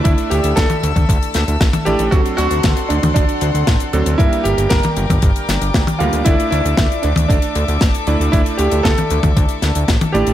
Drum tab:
HH |xxxxxxxxxxxxxxxx|xxxxxxxxxxxxxxxx|xxxxxxxxxxxxxxxx|xxxxxxxxxxxxxxxx|
SD |----o-----o-o---|----o-------o---|----o-----o-o---|----o-------o---|
T1 |-----o-o-----o--|-------o--------|-----o-o-----o--|-------o--------|
BD |o---o--oo---o---|o---o---o---o---|o---o--oo---o---|o---o---o---o---|

HH |xxxxxxxxxxxxxxxx|
SD |----o-----o-o---|
T1 |-----o-o-----o--|
BD |o---o--oo---o---|